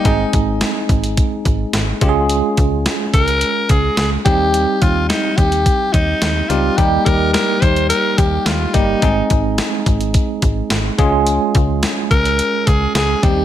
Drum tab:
HH |x-x-x-xxx-x-x-x-|x-x-x-xxx-x-x-x-|x-x-x-xxx-x-x-x-|x-x-x-xxx-x-x-x-|
SD |----o-------o---|----o-------o---|----o-------o---|----o-------o---|
BD |o-o---o-o-o---o-|--o---o---o---o-|--o---o-o-o-----|o-o---o---o---o-|

HH |x-x-x-xxx-x-x-x-|x-x-x-xxx-x-x-x-|
SD |----o-------o---|----o-------o---|
BD |o-o---o-o-o---o-|--o---o---o---o-|